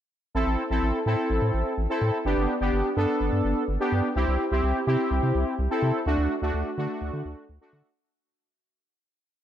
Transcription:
0.34 0.44 A1 loud
0.34 0.63 C4 medium
0.34 0.63 E4 medium
0.34 0.63 A4 loud
0.47 0.56 A1 loud
0.70 0.80 A1 medium
0.70 0.99 C4 medium
0.70 0.99 E4 medium
0.70 0.99 A4 medium
0.82 0.92 A1 loud
1.06 1.16 A2 medium
1.06 1.73 C4 medium
1.06 1.73 E4 medium
1.06 1.73 A4 medium
1.30 1.39 A1 loud
1.42 1.51 A2 loud
1.54 1.63 A1 loud
1.78 1.87 A1 loud
1.89 2.18 C4 medium
1.89 2.18 E4 medium
1.89 2.18 A4 medium
2.01 2.11 A2 loud
2.25 2.35 G1 loud
2.25 2.54 B3 medium
2.25 2.54 D4 medium
2.25 2.54 G4 loud
2.37 2.47 G1 loud
2.61 2.70 G1 medium
2.61 2.90 B3 medium
2.61 2.90 D4 medium
2.61 2.90 G4 medium
2.73 2.82 G1 loud
2.96 3.06 G2 loud
2.96 3.63 B3 medium
2.96 3.63 D4 medium
2.96 3.63 A4 loud
3.20 3.30 G1 loud
3.33 3.42 G2 loud
3.44 3.54 G1 loud
3.68 3.78 G1 loud
3.80 4.09 B3 medium
3.80 4.09 D4 medium
3.80 4.09 G4 medium
3.92 4.02 G2 loud
4.16 4.25 C2 loud
4.16 4.44 C4 medium
4.16 4.44 E4 medium
4.16 4.44 G4 loud
4.28 4.37 C2 medium
4.51 4.61 C2 loud
4.51 4.80 C4 medium
4.51 4.80 E4 medium
4.51 4.80 G4 medium
4.63 4.73 C2 loud
4.87 4.97 C3 loud
4.87 5.54 C4 medium
4.87 5.54 E4 medium
4.87 5.54 G4 medium
5.11 5.20 C2 loud
5.23 5.32 C3 medium
5.35 5.44 C2 medium
5.59 5.68 C2 loud
5.70 5.99 C4 medium
5.70 5.99 E4 medium
5.70 5.99 A4 medium
5.82 5.92 C3 medium
6.06 6.16 D2 loud
6.06 6.35 A3 medium
6.06 6.35 D4 medium
6.06 6.35 F#4 loud
6.18 6.28 D2 loud
6.42 6.51 D2 medium
6.42 6.71 A3 medium
6.42 6.71 D4 medium
6.42 6.71 F#4 medium
6.54 6.63 D2 loud
6.78 6.87 D3 loud
6.78 7.45 A3 medium
6.78 7.45 D4 medium
6.78 7.45 F#4 loud
7.01 7.11 D2 loud
7.13 7.23 D3 medium
7.25 7.35 D2 loud
7.49 7.59 D2 loud
7.61 7.90 A3 medium
7.61 7.90 D4 medium
7.61 7.90 F#4 medium
7.73 7.82 D3 loud

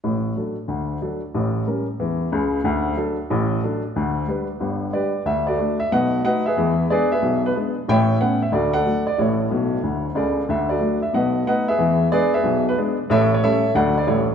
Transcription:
0.04 0.32 A1 soft
0.04 0.32 A2 medium
0.37 0.55 F#3 soft
0.37 0.55 D4 soft
0.37 0.55 A4 soft
0.68 0.97 D2 medium
0.68 0.96 D3 medium
1.02 1.20 F#3 soft
1.02 1.20 D4 soft
1.02 1.20 A4 soft
1.34 1.62 A1 medium
1.34 1.63 A2 medium
1.67 1.85 G3 soft
1.67 1.85 C#4 soft
1.67 1.86 A#4 soft
2.00 2.28 E2 medium
2.00 2.28 E3 medium
2.32 2.59 C#2 medium
2.32 2.59 C#3 medium
2.64 2.93 D2 medium
2.64 2.92 D3 medium
2.97 3.15 F#3 soft
2.97 3.15 D4 soft
2.97 3.16 A4 medium
3.30 3.58 A1 medium
3.30 3.58 A2 medium
3.63 3.81 F#3 soft
3.63 3.81 D4 medium
3.63 3.82 A4 medium
3.96 4.24 D2 medium
3.96 4.24 D3 medium
4.28 4.46 G3 soft
4.28 4.47 D4 soft
4.28 4.47 B4 soft
4.60 4.89 G1 medium
4.60 4.89 G2 medium
4.93 5.11 G3 soft
4.93 5.12 D4 soft
4.93 5.25 G4 soft
4.93 5.25 B4 soft
4.93 5.21 D5 medium
5.26 5.54 D2 medium
5.26 5.54 D3 medium
5.26 5.44 E5 medium
5.47 5.57 F#4 medium
5.47 5.78 A4 medium
5.47 5.75 D5 medium
5.58 5.77 A3 soft
5.58 5.77 D4 soft
5.58 5.77 F#4 soft
5.80 5.90 E5 medium
5.92 6.20 B1 medium
5.92 6.20 B2 medium
5.92 6.23 B4 medium
5.92 6.23 D#5 medium
5.92 6.20 F#5 medium
6.24 6.42 A3 soft
6.24 6.42 D#4 soft
6.24 6.43 F#4 soft
6.24 6.45 B4 medium
6.24 6.45 D#5 medium
6.24 6.42 F#5 medium
6.46 6.88 G#4 medium
6.46 6.88 B4 medium
6.46 6.83 E5 medium
6.57 6.85 E2 medium
6.57 6.85 E3 medium
6.90 7.08 G#3 soft
6.90 7.08 B3 medium
6.90 7.08 D4 medium
6.90 7.11 G#4 medium
6.90 7.11 B4 medium
6.90 7.09 D5 medium
7.12 7.43 G#4 medium
7.12 7.43 B4 medium
7.12 7.39 E5 medium
7.22 7.50 B1 medium
7.22 7.50 B2 medium
7.46 7.55 B4 medium
7.55 7.73 G#3 soft
7.55 7.73 B3 soft
7.55 7.74 D4 soft
7.88 8.16 A1 medium
7.88 8.16 A2 medium
7.88 8.20 C#5 medium
7.88 8.20 E5 medium
7.88 8.16 G5 loud
8.20 8.38 A3 soft
8.20 8.38 B3 soft
8.20 8.39 C#4 medium
8.20 8.39 F#5 medium
8.42 8.52 E5 medium
8.52 8.80 D2 medium
8.52 8.80 D3 medium
8.52 8.73 F#4 medium
8.52 8.73 A4 medium
8.52 8.71 D5 medium
8.73 9.05 A4 medium
8.73 9.05 D5 medium
8.73 9.01 F#5 medium
8.85 9.03 F#3 soft
8.85 9.04 A3 soft
8.85 9.04 D4 soft
9.07 9.17 D5 medium
9.18 9.46 A1 medium
9.18 9.47 A2 medium
9.18 10.13 E4 soft
9.18 10.13 A4 medium
9.18 10.02 C#5 medium
9.51 9.76 B1 medium
9.51 9.75 B2 medium
9.83 10.08 D2 medium
9.83 10.08 D3 medium
10.15 10.40 C#2 medium
10.15 10.40 C#3 medium
10.15 10.47 A4 soft
10.15 10.44 D5 medium
10.49 10.77 D2 medium
10.49 10.77 D3 medium
10.49 10.67 E5 medium
10.69 11.01 F#4 medium
10.69 11.01 A4 medium
10.69 10.97 D5 medium
10.81 10.99 F#3 soft
10.81 10.99 A3 soft
10.81 10.99 D4 soft
11.02 11.13 E5 medium
11.13 11.42 B1 medium
11.13 11.42 B2 medium
11.13 11.45 B4 medium
11.13 11.45 D#5 medium
11.13 11.42 F#5 medium
11.47 11.65 A3 soft
11.47 11.65 B3 soft
11.47 11.66 D#4 soft
11.47 11.67 B4 medium
11.47 11.67 D#5 medium
11.47 11.65 F#5 medium
11.68 12.10 G#4 medium
11.68 12.10 B4 medium
11.68 12.06 E5 medium
11.79 12.07 E2 medium
11.79 12.07 E3 medium
12.12 12.30 G#3 medium
12.12 12.30 B3 soft
12.12 12.30 D4 medium
12.12 12.33 G#4 medium
12.12 12.33 B4 medium
12.12 12.31 D5 loud
12.34 12.65 G#4 medium
12.34 12.65 B4 medium
12.34 12.62 E5 medium
12.44 12.72 B1 medium
12.44 12.72 B2 medium
12.69 12.77 B4 medium
12.78 12.95 G#3 medium
12.78 12.96 B3 soft
12.78 12.96 D4 medium
13.10 13.38 A1 medium
13.10 13.38 A2 medium
13.10 13.31 A4 medium
13.10 13.31 C#5 medium
13.10 13.29 E5 loud
13.34 13.42 C#5 medium
13.43 13.61 G3 medium
13.43 13.61 A3 medium
13.43 13.61 C#4 medium
13.43 13.74 A4 medium
13.43 13.74 C#5 medium
13.43 13.71 E5 loud
13.75 14.03 D2 medium
13.75 14.02 D3 medium
13.75 13.93 F#3 soft
13.75 13.93 A3 soft
13.75 13.94 D4 soft
13.75 13.96 A4 medium
13.75 13.96 D5 medium
13.75 13.94 F#5 medium
13.98 14.06 D5 medium
14.07 14.35 A1 medium
14.07 14.35 A2 medium
14.07 14.25 G3 soft
14.07 14.25 A3 soft
14.07 14.26 E4 soft
14.07 14.35 G4 medium
14.07 14.35 A4 medium
14.07 14.35 C#5 medium

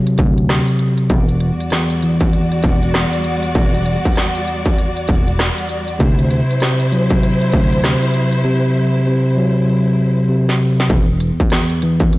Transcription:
0.00 0.49 C3 loud
0.00 1.10 F#3 medium
0.07 closed hi-hat medium
0.18 0.59 D2 medium
0.18 kick loud
0.18 closed hi-hat medium
0.38 closed hi-hat medium
0.49 1.10 C3 medium
0.49 cross-stick medium
0.49 snare loud
0.49 closed hi-hat medium
0.68 closed hi-hat medium
0.79 closed hi-hat medium
0.98 closed hi-hat medium
1.10 1.50 E1 loud
1.10 1.70 E2 loud
1.10 5.96 G3 medium
1.10 5.96 F#4 medium
1.10 5.96 D5 medium
1.10 kick loud
1.10 closed hi-hat medium
1.29 closed hi-hat medium
1.40 closed hi-hat medium
1.60 closed hi-hat medium
1.70 2.94 E2 medium
1.70 cross-stick medium
1.70 snare loud
1.70 closed hi-hat medium
1.90 closed hi-hat medium
2.02 3.56 E3 medium
2.02 closed hi-hat medium
2.20 kick medium
2.20 closed hi-hat soft
2.33 closed hi-hat medium
2.52 closed hi-hat medium
2.63 3.04 E1 medium
2.63 kick loud
2.63 closed hi-hat medium
2.83 closed hi-hat medium
2.94 3.56 E2 medium
2.94 cross-stick medium
2.94 snare loud
2.94 closed hi-hat medium
3.13 closed hi-hat medium
3.24 closed hi-hat medium
3.43 closed hi-hat medium
3.55 3.95 E1 loud
3.55 kick loud
3.55 closed hi-hat medium
3.74 closed hi-hat medium
3.86 closed hi-hat medium
4.05 kick medium
4.05 closed hi-hat medium
4.16 cross-stick medium
4.16 snare loud
4.16 closed hi-hat medium
4.35 closed hi-hat medium
4.48 closed hi-hat medium
4.65 kick medium
4.65 closed hi-hat soft
4.78 closed hi-hat medium
4.97 closed hi-hat medium
5.08 5.49 E1 medium
5.08 kick loud
5.08 closed hi-hat medium
5.28 closed hi-hat medium
5.39 cross-stick loud
5.39 snare loud
5.39 closed hi-hat medium
5.58 closed hi-hat medium
5.69 closed hi-hat medium
5.88 closed hi-hat medium
5.99 6.40 D2 loud
5.99 6.60 C3 medium
5.99 10.86 F#3 medium
5.99 10.87 E4 medium
5.99 10.86 C5 medium
5.99 kick loud
5.99 closed hi-hat medium
6.19 closed hi-hat medium
6.31 closed hi-hat medium
6.51 closed hi-hat medium
6.60 7.84 C3 medium
6.60 cross-stick medium
6.60 snare loud
6.60 closed hi-hat medium
6.80 closed hi-hat medium
6.92 9.35 F#3 medium
6.92 closed hi-hat medium
7.10 kick medium
7.10 closed hi-hat soft
7.23 closed hi-hat medium
7.41 closed hi-hat medium
7.52 7.93 D2 loud
7.52 kick loud
7.52 closed hi-hat medium
7.72 closed hi-hat medium
7.84 8.43 C3 medium
7.84 cross-stick medium
7.84 snare loud
7.84 closed hi-hat medium
8.03 closed hi-hat medium
8.14 closed hi-hat medium
8.33 closed hi-hat medium
8.44 9.05 C3 loud
9.07 10.27 C3 medium
9.37 10.90 F#3 medium
10.28 10.90 C3 medium
10.49 snare medium
10.80 snare medium
10.90 11.30 E1 loud
10.90 11.50 E2 loud
10.90 kick loud
10.90 closed hi-hat medium
11.20 closed hi-hat medium
11.40 kick medium
11.40 closed hi-hat medium
11.50 12.19 E2 medium
11.50 cross-stick medium
11.50 snare loud
11.50 closed hi-hat medium
11.70 closed hi-hat soft
11.82 12.19 E3 medium
11.82 closed hi-hat medium
12.00 kick medium
12.00 closed hi-hat medium
12.13 closed hi-hat medium

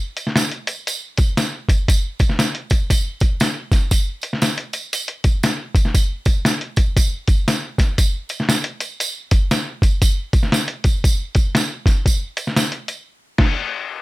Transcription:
0.17 closed hi-hat medium
0.17 tambourine soft
0.27 snare soft
0.36 snare loud
0.36 closed hi-hat medium
0.36 tambourine loud
0.52 closed hi-hat soft
0.67 closed hi-hat medium
0.67 tambourine soft
0.87 closed hi-hat medium
0.87 tambourine medium
1.17 kick medium
1.17 closed hi-hat medium
1.17 tambourine soft
1.37 snare medium
1.37 closed hi-hat medium
1.37 tambourine medium
1.69 kick medium
1.69 closed hi-hat medium
1.69 tambourine soft
1.88 kick medium
1.88 closed hi-hat medium
1.88 tambourine medium
2.19 kick medium
2.19 closed hi-hat medium
2.19 tambourine soft
2.29 snare soft
2.39 snare loud
2.39 closed hi-hat medium
2.39 tambourine medium
2.55 closed hi-hat medium
2.70 kick medium
2.70 closed hi-hat medium
2.70 tambourine medium
2.90 kick loud
2.90 closed hi-hat loud
2.90 tambourine medium
3.20 kick medium
3.20 closed hi-hat medium
3.20 tambourine soft
3.40 snare loud
3.40 closed hi-hat medium
3.40 tambourine medium
3.72 kick medium
3.72 snare soft
3.72 closed hi-hat medium
3.72 tambourine medium
3.91 kick medium
3.91 closed hi-hat medium
3.91 tambourine medium
4.21 closed hi-hat medium
4.21 tambourine soft
4.33 snare soft
4.42 snare loud
4.42 closed hi-hat medium
4.42 tambourine loud
4.58 closed hi-hat soft
4.73 closed hi-hat medium
4.73 tambourine medium
4.93 closed hi-hat medium
4.93 tambourine medium
5.08 closed hi-hat medium
5.24 kick medium
5.24 closed hi-hat medium
5.24 tambourine soft
5.43 snare loud
5.43 closed hi-hat medium
5.43 tambourine medium
5.75 kick medium
5.75 closed hi-hat medium
5.75 tambourine medium
5.85 snare soft
5.94 kick medium
5.94 closed hi-hat medium
5.94 tambourine medium
6.25 kick medium
6.25 closed hi-hat medium
6.25 tambourine soft
6.45 snare loud
6.45 closed hi-hat medium
6.45 tambourine loud
6.61 closed hi-hat soft
6.76 kick medium
6.76 closed hi-hat medium
6.76 tambourine soft
6.97 kick loud
6.97 closed hi-hat medium
6.97 tambourine medium
7.28 kick medium
7.28 closed hi-hat medium
7.28 tambourine soft
7.48 snare medium
7.48 closed hi-hat medium
7.48 tambourine medium
7.78 kick medium
7.78 snare soft
7.78 closed hi-hat medium
7.78 tambourine soft
7.98 kick medium
7.98 closed hi-hat medium
7.98 tambourine medium
8.29 closed hi-hat medium
8.29 tambourine soft
8.40 snare soft
8.49 snare loud
8.49 closed hi-hat medium
8.49 tambourine loud
8.64 closed hi-hat soft
8.80 closed hi-hat medium
8.80 tambourine medium
9.00 closed hi-hat medium
9.00 tambourine medium
9.31 kick medium
9.31 closed hi-hat medium
9.31 tambourine soft
9.51 snare loud
9.51 closed hi-hat medium
9.51 tambourine medium
9.82 kick medium
9.82 closed hi-hat medium
9.82 tambourine soft
10.02 kick medium
10.02 closed hi-hat medium
10.02 tambourine medium
10.33 kick medium
10.33 closed hi-hat medium
10.33 tambourine soft
10.43 snare soft
10.52 snare loud
10.52 closed hi-hat medium
10.52 tambourine loud
10.68 closed hi-hat soft
10.84 kick medium
10.84 closed hi-hat medium
10.84 tambourine soft
11.04 kick loud
11.04 closed hi-hat medium
11.04 tambourine medium
11.35 kick medium
11.35 closed hi-hat medium
11.35 tambourine soft
11.55 snare loud
11.55 closed hi-hat medium
11.55 tambourine medium
11.86 kick medium
11.86 snare soft
11.86 closed hi-hat medium
11.86 tambourine medium
12.06 kick medium
12.06 closed hi-hat medium
12.06 tambourine medium
12.37 closed hi-hat medium
12.37 tambourine soft
12.47 snare soft
12.56 snare loud
12.56 closed hi-hat medium
12.56 tambourine loud
12.72 closed hi-hat soft
12.88 closed hi-hat medium
12.88 tambourine soft
13.38 kick loud
13.38 snare loud
13.38 crash medium

